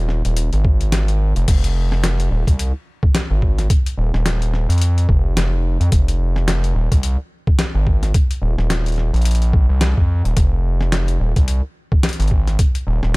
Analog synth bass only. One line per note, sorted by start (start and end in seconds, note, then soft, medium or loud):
0.00 0.22 D#1 loud
0.25 0.50 D#1 loud
0.53 1.34 G#1 loud
1.36 1.46 F1 loud
1.48 2.29 F1 loud
2.31 2.45 D#1 medium
2.47 2.73 C2 loud
3.30 3.68 G#1 loud
3.98 4.11 D#1 medium
4.14 4.67 D#1 loud
4.69 5.07 F2 loud
5.09 5.35 F1 loud
5.36 5.78 F1 loud
5.80 5.90 F2 loud
5.92 6.74 F1 loud
6.75 6.89 D#1 loud
6.92 7.17 C2 medium
7.75 8.12 G#1 medium
8.42 8.56 D#1 loud
8.58 9.11 D#1 loud
9.13 9.67 A#1 loud
9.69 9.95 C2 loud
9.97 10.23 F2 loud
10.25 10.35 D#1 loud
10.37 11.18 F1 loud
11.20 11.34 D#1 loud
11.36 11.61 C2 loud
12.19 12.57 G#1 loud
12.87 13.00 D#1 loud
13.03 13.17 D#1 loud